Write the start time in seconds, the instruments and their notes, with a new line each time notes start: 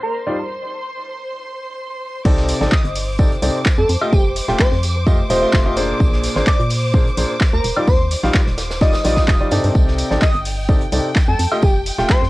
Already playing: violin section C5 C6
0.03 digital synth lead A#4
0.14 tambourine
0.27 grand piano G3 D#4 F4 D5
2.25 fm bass C2, grand piano C3 C4 D#4 A4 D5, violin section C5 D6, kick, crash, tambourine
2.37 snare
2.49 open hi-hat, tambourine
2.61 fm bass A1, grand piano C3 C4 D#4 A4 D5, snare
2.71 digital synth lead D#5, kick, snare, clap, tambourine
2.84 fm bass G1, closed hi-hat
2.95 open hi-hat
3.19 grand piano C3 C4 D#4 A4 D5, kick, tambourine
3.32 closed hi-hat
3.42 fm bass C2, grand piano C3 C4 D#4 A4 D5, open hi-hat, tambourine
3.66 kick, snare, clap, tambourine
3.78 fm bass F2, digital synth lead A4
3.89 fm bass F2, open hi-hat, tambourine
4.01 grand piano A3 F4 G4 D#5, high woodblock
4.13 fm bass F1, digital synth lead G4, kick, tambourine
4.36 open hi-hat, tambourine
4.48 fm bass D#1, grand piano A3 F4 G4 G5, snare
4.59 digital synth lead C5, kick, snare, clap, tambourine
4.72 fm bass F2, snare
4.83 open hi-hat, tambourine
5.06 grand piano A3 F4 G4 D#5, kick, tambourine
5.30 fm bass D#1, grand piano A3 F4 G4 D#5, digital synth lead C5, open hi-hat, tambourine
5.42 grand piano A3 F4 G4 D#5
5.53 fm bass F1, kick, snare, clap, tambourine
5.66 grand piano A3 F4 G4 D#5
5.76 grand piano A#2 A#3 D4 G#4 C5, open hi-hat, tambourine
6.00 fm bass A#1, kick, tambourine
6.13 snare
6.23 open hi-hat, tambourine
6.36 fm bass G#1, grand piano A#2 A#3 D4 G#4 C5, snare
6.46 digital synth lead D5, kick, snare, clap, tambourine
6.59 fm bass A#2, closed hi-hat
6.70 open hi-hat
6.94 grand piano A#2 A#3 D4 G#4 C5, kick, tambourine
7.07 closed hi-hat
7.17 fm bass A#1, grand piano A#2 A#3 D4 G#4 C5, open hi-hat, tambourine
7.41 kick, snare, clap, tambourine
7.53 fm bass D2, digital synth lead A#4
7.64 fm bass D#1, open hi-hat, tambourine
7.77 grand piano G3 D#4 F4 D5, high woodblock
7.87 fm bass D#2, digital synth lead C5, kick, tambourine
8.11 open hi-hat, tambourine
8.23 fm bass A#1, grand piano G3 D#4 F4 F5, snare
8.34 kick, snare, clap, tambourine
8.46 fm bass D#1, snare
8.58 snare, open hi-hat, tambourine
8.71 snare, tambourine
8.81 grand piano G3 D#4 F4 D5, digital synth lead D#5, kick, snare, tambourine
8.93 snare, tambourine
9.04 fm bass A#1, grand piano G3 D#4 F4 D5, snare, open hi-hat, tambourine
9.17 grand piano G3 D#4 F4 D5, kick, snare, tambourine
9.28 fm bass D#1, kick, snare, clap, tambourine
9.41 grand piano G3 D#4 F4 D5
9.51 fm bass G2, grand piano C3 C4 D#4 A4 D5, open hi-hat, tambourine
9.64 fm bass G2, open hi-hat
9.75 fm bass C2, violin section G5, kick, tambourine
9.88 snare
9.98 open hi-hat, tambourine
10.11 fm bass A1, grand piano C3 C4 D#4 A4 D5, snare
10.21 digital synth lead D#5, kick, snare, clap, tambourine
10.34 fm bass G1, closed hi-hat
10.45 open hi-hat
10.69 grand piano C3 C4 D#4 A4 D5, kick, tambourine
10.81 closed hi-hat
10.92 fm bass C2, grand piano C3 C4 D#4 A4 D5, open hi-hat, tambourine
11.15 kick, snare, clap, tambourine
11.28 fm bass F2, digital synth lead A4
11.39 fm bass F2, open hi-hat, tambourine
11.52 grand piano A3 F4 G4 D#5, high woodblock
11.62 fm bass F1, digital synth lead G4, kick, tambourine
11.86 open hi-hat, tambourine
11.98 fm bass D#1, grand piano A3 F4 G4 G5, snare
12.09 digital synth lead C5, kick, snare, clap, tambourine
12.22 fm bass F2, snare